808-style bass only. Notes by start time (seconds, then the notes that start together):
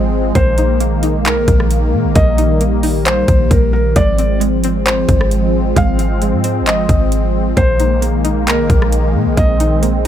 Already playing: G#1
0.35 A#1
1.25 C2
1.37 A#1
1.48 A#1
1.93 A#2
2.04 A#1
2.16 A#1
3.28 A#1
3.51 A#1
3.96 G#1
5.09 G#1
5.76 G#1
6.33 G#2
6.61 G#1
6.89 G#1
7.57 A#1
8.47 C2
8.58 A#1
8.70 A#1
9.15 A#2
9.26 A#1
9.37 A#1